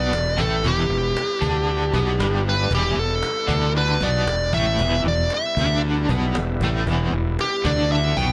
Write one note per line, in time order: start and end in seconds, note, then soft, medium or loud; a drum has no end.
0.00 0.10 B1 medium
0.00 0.11 B2 medium
0.00 2.66 G3 medium
0.00 0.11 B3 medium
0.00 2.67 B3 medium
0.00 2.67 E4 medium
0.00 2.67 B4 medium
0.00 0.40 D5 loud
0.12 0.36 E1 medium
0.12 0.33 E2 medium
0.12 cajon slap loud
0.37 0.62 A1 loud
0.37 0.62 A2 medium
0.37 0.63 A3 medium
0.37 0.65 A4 medium
0.37 cajon bass loud
0.63 0.88 E1 medium
0.63 0.89 E2 medium
0.63 0.89 E3 loud
0.63 2.43 G4 medium
0.63 cajon bass medium
0.89 1.13 E1 medium
0.89 1.10 E2 medium
1.17 cajon slap loud
1.41 1.90 D2 medium
1.41 1.93 D3 medium
1.41 1.93 D4 medium
1.41 cajon bass medium
1.93 2.17 B1 medium
1.93 2.19 B2 medium
1.93 2.19 B3 medium
1.93 cajon bass loud
2.18 2.67 G1 medium
2.18 2.70 G2 medium
2.18 2.70 G3 loud
2.18 cajon slap loud
2.49 2.71 B4 medium
2.70 2.95 E1 medium
2.70 2.95 E2 medium
2.70 2.97 E3 loud
2.70 6.82 G3 medium
2.70 6.83 B3 medium
2.70 6.82 E4 medium
2.70 cajon bass loud
2.75 2.97 G4 medium
2.96 3.21 E1 medium
2.96 3.18 E2 medium
2.96 3.72 A4 medium
3.23 cajon slap loud
3.47 3.97 D2 medium
3.47 3.99 D3 medium
3.47 4.00 D4 medium
3.47 cajon bass medium
3.78 4.03 B4 medium
4.01 4.25 B1 medium
4.01 4.26 B2 medium
4.01 4.27 B3 medium
4.01 4.28 D5 medium
4.01 cajon bass medium
4.27 4.51 E1 medium
4.27 4.48 E2 medium
4.27 4.54 D5 medium
4.27 cajon slap loud
4.53 4.77 A1 medium
4.53 4.78 A2 medium
4.53 4.79 A3 medium
4.53 5.02 E5 medium
4.53 cajon bass medium
4.79 5.03 E1 medium
4.79 5.05 E2 medium
4.79 5.05 E3 loud
4.79 cajon bass loud
5.04 5.28 E1 medium
5.04 5.27 E2 medium
5.08 5.33 D5 medium
5.30 5.81 E5 medium
5.30 cajon slap medium
5.57 6.05 D2 medium
5.57 6.09 D3 medium
5.57 6.09 D4 loud
5.57 cajon bass medium
6.09 6.33 B1 medium
6.09 6.34 B2 medium
6.09 6.35 B3 medium
6.09 cajon bass medium
6.35 6.59 E1 medium
6.35 6.57 E2 medium
6.35 cajon slap loud
6.60 6.85 A1 medium
6.60 6.87 A2 medium
6.60 6.87 A3 medium
6.60 cajon bass loud
6.85 7.11 E1 loud
6.85 7.12 E2 medium
6.85 7.13 E3 loud
6.85 8.32 G3 medium
6.85 8.32 B3 medium
6.85 8.32 E4 medium
6.85 cajon bass medium
7.12 7.36 E1 medium
7.12 7.34 E2 medium
7.39 7.66 G4 medium
7.39 cajon slap medium
7.64 8.13 D2 medium
7.64 8.15 D3 medium
7.64 8.16 D4 medium
7.64 7.91 D5 medium
7.64 cajon bass loud
7.92 8.18 E5 medium
8.17 8.32 B1 loud
8.17 8.32 B2 medium
8.17 8.32 B3 medium
8.17 8.32 G5 loud
8.17 cajon bass medium